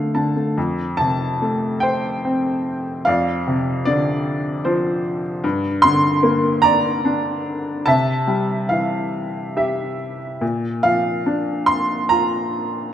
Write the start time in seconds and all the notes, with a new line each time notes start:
Already playing: D3 A3 F5
0.15 D3 A5
0.36 A3
0.58 F2
0.97 C3 A5
1.42 A3
1.80 C5 G5
2.25 C4
3.05 F2 D5 F5
3.47 C3
3.85 D3 D5
4.65 F3 C5
5.44 G2
5.82 D3 C6
6.23 A#3
6.62 D5 A#5
7.05 D4
7.86 C3 E5 A5
8.27 G3
8.69 E3 F5
9.57 G4 E5
10.41 A#2
10.83 F3 F5
11.26 D4
11.66 C6
12.09 F4 A#5